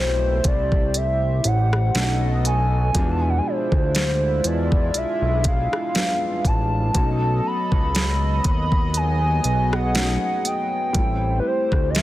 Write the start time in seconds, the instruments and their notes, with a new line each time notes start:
Already playing: analog synth bass B1, felt piano G3 A3 C4 E4 C5, analog synth pad A3 E4 G4 C5, soft synth lead C5, impact
0.44 analog synth bass C2, soft synth lead D5, kick, closed hi-hat
0.72 kick
0.94 soft synth lead E5, closed hi-hat
1.44 analog synth bass A1, soft synth lead F#5, closed hi-hat
1.73 cross-stick
1.94 analog synth bass B1, felt piano F#3 A3 C#4 D4, analog synth pad B3 F#4 A4 D#5, snare, closed hi-hat
2.04 felt piano D#4
2.45 soft synth lead G#5, closed hi-hat
2.93 analog synth bass E2, felt piano B2 F3 G#3, analog synth pad G#3 D4 E4 F4, kick, closed hi-hat
2.99 felt piano D4
3.11 soft synth lead A5
3.21 soft synth lead G#5
3.29 soft synth lead F#5
3.38 soft synth lead G#5
3.47 soft synth lead C5
3.72 analog synth bass D2, kick
3.95 snare, closed hi-hat
4.44 analog synth bass E2, soft synth lead D5, closed hi-hat
4.72 kick
4.94 analog synth bass B1, soft synth lead E5, closed hi-hat
5.22 analog synth bass B1
5.44 soft synth lead F5, kick, closed hi-hat
5.73 cross-stick
5.94 felt piano F3 G3 B3 D4, snare, closed hi-hat
6.02 felt piano G#3
6.45 analog synth bass A1, soft synth lead A5, kick, closed hi-hat
6.93 analog synth bass B1, felt piano F#3 A3 C#4, analog synth pad F#3 B3 A4 D#5, kick, closed hi-hat
6.99 felt piano D#4
7.47 soft synth lead B5
7.72 analog synth bass C#2, kick
7.95 snare, closed hi-hat
8.44 analog synth bass D#2, soft synth lead B5, kick, closed hi-hat
8.72 kick
8.94 analog synth pad G#4, soft synth lead G#5, closed hi-hat
9.44 analog synth bass B1, closed hi-hat
9.73 soft synth lead F#5, cross-stick
9.94 felt piano F#3 A3 C#4 D#4, snare, closed hi-hat
10.45 soft synth lead G5, closed hi-hat
10.93 analog synth bass A1, felt piano G3 A3 C4, analog synth pad A3 E4 G4 C5, kick, closed hi-hat
10.99 felt piano E4
11.40 soft synth lead B4
11.47 soft synth lead C5
11.72 analog synth bass D2, kick, cross-stick
11.90 soft synth lead D#5
11.95 soft synth lead E5, snare, closed hi-hat